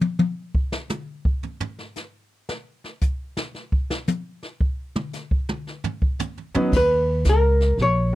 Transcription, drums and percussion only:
0.01 high tom
0.19 high tom
0.55 kick
0.72 snare
0.89 hi-hat pedal, mid tom
1.25 kick
1.43 floor tom
1.60 floor tom
1.79 snare
1.96 snare, hi-hat pedal
2.49 snare
2.84 snare
3.01 kick, hi-hat pedal
3.37 snare
3.55 snare
3.72 kick
3.90 snare
4.07 hi-hat pedal, high tom
4.43 snare
4.61 kick
4.96 mid tom
5.13 snare, hi-hat pedal
5.31 kick
5.49 mid tom
5.67 snare
5.84 floor tom
6.02 kick
6.19 floor tom, hi-hat pedal
6.37 floor tom
6.55 floor tom
6.72 brush sweep, kick, snare, crash
7.24 kick, snare, hi-hat pedal
7.60 snare
7.78 brush sweep, kick, snare

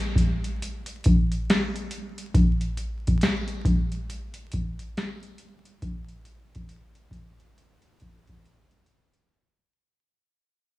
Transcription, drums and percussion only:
0.00 closed hi-hat
0.16 kick, closed hi-hat
0.44 closed hi-hat
0.62 closed hi-hat
0.86 closed hi-hat
1.04 kick, closed hi-hat
1.32 closed hi-hat
1.50 snare, closed hi-hat
1.76 closed hi-hat
1.91 closed hi-hat
2.18 closed hi-hat
2.34 kick, closed hi-hat
2.61 closed hi-hat
2.77 closed hi-hat
3.07 kick, closed hi-hat
3.21 snare, closed hi-hat
3.48 closed hi-hat
3.65 kick, closed hi-hat
3.92 closed hi-hat
4.10 closed hi-hat
4.34 closed hi-hat
4.52 kick, closed hi-hat
4.79 closed hi-hat
4.97 snare, closed hi-hat
5.23 closed hi-hat
5.38 closed hi-hat
5.65 closed hi-hat
5.82 kick, closed hi-hat
6.09 closed hi-hat
6.25 closed hi-hat
6.55 kick, closed hi-hat
6.69 closed hi-hat
6.95 closed hi-hat
7.11 kick, closed hi-hat
7.40 closed hi-hat
7.58 closed hi-hat
7.82 closed hi-hat
8.00 kick, closed hi-hat
8.27 kick, closed hi-hat
8.45 closed hi-hat
8.71 closed hi-hat
8.86 closed hi-hat
9.13 closed hi-hat

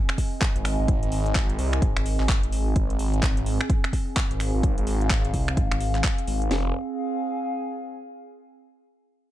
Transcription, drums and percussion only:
0.09 finger snap, closed hi-hat
0.18 kick, open hi-hat
0.41 kick, clap, closed hi-hat
0.56 closed hi-hat
0.65 finger snap, open hi-hat
0.88 kick, closed hi-hat
1.03 closed hi-hat
1.12 open hi-hat
1.26 closed hi-hat
1.35 kick, clap, closed hi-hat
1.50 closed hi-hat
1.59 open hi-hat
1.73 finger snap, closed hi-hat
1.82 kick, closed hi-hat
1.97 finger snap, closed hi-hat
2.06 open hi-hat
2.20 clap
2.29 kick, clap, closed hi-hat
2.43 closed hi-hat
2.52 open hi-hat
2.76 kick, closed hi-hat
2.90 closed hi-hat
2.99 open hi-hat
3.14 closed hi-hat
3.23 kick, clap, closed hi-hat
3.37 closed hi-hat
3.46 open hi-hat
3.61 finger snap, closed hi-hat
3.70 kick, closed hi-hat
3.84 finger snap, closed hi-hat
3.93 kick, open hi-hat
4.16 kick, clap, closed hi-hat
4.31 closed hi-hat
4.40 finger snap, open hi-hat
4.63 kick, closed hi-hat
4.78 closed hi-hat
4.87 open hi-hat
5.01 closed hi-hat
5.10 kick, clap, closed hi-hat
5.25 closed hi-hat
5.34 kick, open hi-hat
5.48 finger snap, closed hi-hat
5.57 kick, closed hi-hat
5.72 finger snap, closed hi-hat
5.80 open hi-hat
5.95 clap, closed hi-hat
6.04 kick, clap, closed hi-hat
6.18 closed hi-hat
6.27 open hi-hat
6.42 closed hi-hat
6.51 snare

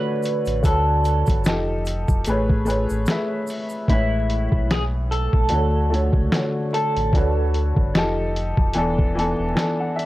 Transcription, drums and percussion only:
0.23 closed hi-hat, shaker
0.46 closed hi-hat, shaker
0.64 kick, closed hi-hat, shaker
1.04 closed hi-hat, shaker
1.26 kick, closed hi-hat, shaker
1.44 snare, closed hi-hat, shaker
1.85 closed hi-hat, shaker
2.08 kick, shaker
2.25 closed hi-hat, shaker
2.49 kick
2.66 shaker
2.70 closed hi-hat
2.89 shaker
3.06 snare, closed hi-hat, shaker
3.47 open hi-hat, shaker
3.69 shaker
3.88 kick, closed hi-hat
4.30 closed hi-hat
4.52 kick
4.71 snare, closed hi-hat
5.12 closed hi-hat
5.33 kick
5.49 closed hi-hat
5.94 closed hi-hat
6.13 kick
6.32 snare, closed hi-hat
6.74 closed hi-hat
6.96 closed hi-hat
7.13 kick, closed hi-hat
7.54 closed hi-hat
7.76 kick
7.95 snare, closed hi-hat
8.36 closed hi-hat
8.57 kick
8.73 closed hi-hat
8.98 kick
9.19 closed hi-hat
9.57 snare, closed hi-hat
9.99 closed hi-hat

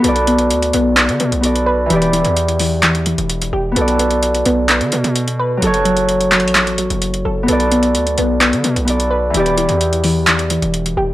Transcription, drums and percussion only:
0.04 closed hi-hat
0.16 closed hi-hat
0.27 closed hi-hat
0.39 closed hi-hat
0.51 closed hi-hat
0.62 closed hi-hat
0.73 closed hi-hat
0.97 clap, closed hi-hat
1.09 closed hi-hat
1.20 closed hi-hat
1.32 closed hi-hat
1.43 closed hi-hat
1.56 closed hi-hat
1.90 closed hi-hat
2.02 closed hi-hat
2.13 closed hi-hat
2.25 closed hi-hat
2.37 closed hi-hat
2.48 closed hi-hat
2.59 open hi-hat
2.83 clap, closed hi-hat
2.95 closed hi-hat
3.06 closed hi-hat
3.18 closed hi-hat
3.30 closed hi-hat
3.42 closed hi-hat
3.76 closed hi-hat
3.88 closed hi-hat
3.99 closed hi-hat
4.11 closed hi-hat
4.23 closed hi-hat
4.35 closed hi-hat
4.46 closed hi-hat
4.69 clap, closed hi-hat
4.81 closed hi-hat
4.92 closed hi-hat
5.04 closed hi-hat
5.16 closed hi-hat
5.28 closed hi-hat
5.62 closed hi-hat
5.74 closed hi-hat
5.85 closed hi-hat
5.97 closed hi-hat
6.09 closed hi-hat
6.21 closed hi-hat
6.32 clap, closed hi-hat, open hi-hat
6.40 closed hi-hat
6.48 closed hi-hat
6.55 clap, closed hi-hat
6.67 closed hi-hat
6.78 closed hi-hat
6.90 closed hi-hat
7.02 closed hi-hat
7.14 closed hi-hat
7.48 closed hi-hat
7.60 closed hi-hat
7.72 closed hi-hat
7.83 closed hi-hat
7.95 closed hi-hat
8.07 closed hi-hat
8.18 closed hi-hat
8.41 clap, closed hi-hat
8.53 closed hi-hat
8.64 closed hi-hat
8.76 closed hi-hat
8.88 closed hi-hat
9.00 closed hi-hat
9.34 closed hi-hat
9.46 closed hi-hat
9.58 closed hi-hat
9.69 closed hi-hat
9.81 closed hi-hat
9.93 closed hi-hat
10.04 open hi-hat
10.27 clap, closed hi-hat
10.39 closed hi-hat
10.50 closed hi-hat
10.62 closed hi-hat
10.74 closed hi-hat
10.86 closed hi-hat

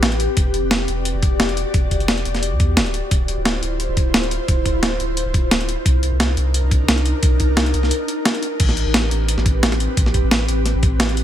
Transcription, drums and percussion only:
0.03 snare, closed hi-hat
0.12 closed hi-hat
0.20 closed hi-hat
0.37 kick, closed hi-hat
0.54 closed hi-hat
0.71 snare, closed hi-hat
0.88 closed hi-hat
1.05 closed hi-hat
1.22 kick, closed hi-hat
1.40 snare, closed hi-hat
1.49 closed hi-hat
1.57 closed hi-hat
1.74 kick, closed hi-hat
1.91 kick, closed hi-hat
2.00 closed hi-hat
2.08 snare, closed hi-hat
2.17 closed hi-hat
2.25 closed hi-hat
2.35 snare, closed hi-hat
2.43 closed hi-hat
2.60 kick, closed hi-hat
2.77 snare, closed hi-hat
2.86 closed hi-hat
2.94 closed hi-hat
3.11 kick, closed hi-hat
3.28 closed hi-hat
3.45 snare, closed hi-hat
3.63 closed hi-hat
3.80 closed hi-hat
3.97 kick, closed hi-hat
4.14 snare, closed hi-hat
4.23 closed hi-hat
4.31 closed hi-hat
4.48 kick, closed hi-hat
4.66 kick, closed hi-hat
4.83 snare, closed hi-hat
5.00 closed hi-hat
5.17 closed hi-hat
5.34 kick, closed hi-hat
5.51 snare, closed hi-hat
5.61 closed hi-hat
5.69 closed hi-hat
5.86 kick, closed hi-hat
6.03 closed hi-hat
6.20 snare, closed hi-hat
6.37 closed hi-hat
6.54 closed hi-hat
6.71 kick, closed hi-hat
6.88 snare, closed hi-hat
6.98 closed hi-hat
7.06 closed hi-hat
7.23 kick, closed hi-hat
7.40 kick, closed hi-hat
7.57 snare, closed hi-hat
7.66 closed hi-hat
7.74 closed hi-hat
7.83 snare
7.91 closed hi-hat
8.08 closed hi-hat
8.25 snare, closed hi-hat
8.35 closed hi-hat
8.43 closed hi-hat
8.60 kick, closed hi-hat, crash
8.69 snare
8.77 closed hi-hat
8.94 snare, closed hi-hat
9.11 closed hi-hat
9.29 closed hi-hat
9.38 snare
9.46 kick, closed hi-hat
9.63 snare, closed hi-hat
9.72 snare, closed hi-hat
9.80 closed hi-hat
9.97 kick, closed hi-hat
10.06 snare
10.14 kick, closed hi-hat
10.31 snare, closed hi-hat
10.48 closed hi-hat
10.66 snare, closed hi-hat
10.83 kick, closed hi-hat
11.00 snare, closed hi-hat
11.09 closed hi-hat
11.17 closed hi-hat

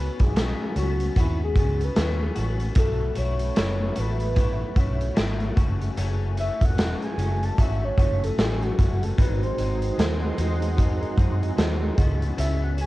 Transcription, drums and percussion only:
0.19 kick, closed hi-hat
0.36 snare, closed hi-hat
0.76 closed hi-hat
1.00 closed hi-hat
1.16 kick, closed hi-hat
1.56 kick, closed hi-hat
1.81 closed hi-hat
1.96 snare, closed hi-hat
2.36 closed hi-hat
2.60 closed hi-hat
2.75 kick, closed hi-hat
3.15 closed hi-hat
3.39 closed hi-hat
3.56 snare, closed hi-hat
3.96 closed hi-hat
4.20 closed hi-hat
4.36 kick, closed hi-hat
4.76 kick, closed hi-hat
5.01 closed hi-hat
5.16 snare, closed hi-hat
5.40 closed hi-hat
5.57 kick, closed hi-hat
5.81 closed hi-hat
5.97 closed hi-hat
6.37 closed hi-hat
6.61 kick, closed hi-hat
6.78 snare, closed hi-hat
7.02 closed hi-hat
7.19 closed hi-hat
7.43 closed hi-hat
7.58 kick, closed hi-hat
7.98 kick, closed hi-hat
8.24 closed hi-hat
8.38 snare, closed hi-hat
8.62 closed hi-hat
8.79 kick, closed hi-hat
9.03 closed hi-hat
9.18 kick, closed hi-hat
9.43 closed hi-hat
9.58 closed hi-hat
9.82 closed hi-hat
9.99 snare, closed hi-hat
10.38 closed hi-hat
10.62 closed hi-hat
10.78 kick, closed hi-hat
11.02 closed hi-hat
11.18 kick, closed hi-hat
11.43 closed hi-hat
11.58 snare, closed hi-hat
11.98 kick, closed hi-hat
12.22 closed hi-hat
12.38 closed hi-hat
12.78 closed hi-hat

